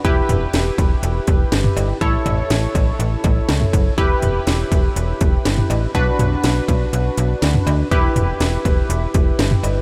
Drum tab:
HH |x-x-x-x-x-x-x-x-|x-x-x-x-x-x-x-x-|x-x-x-x-x-x-x-x-|x-x-x-x-x-x-x-x-|
CB |--------------x-|--x---x---x-----|--------------x-|--------------x-|
SD |----o-------o---|----o-------o---|----o-------o---|----o-------o---|
T2 |--o----------o--|--o----------o--|--o----------o--|--o----------o--|
BD |o-----o---o-----|o-----o---o---o-|o-----o---o-----|o-----o---------|

HH |x-x-x-x-x-x-x-x-|
CB |--------------x-|
SD |----o-------o---|
T2 |--o----------o--|
BD |o-----o---o-----|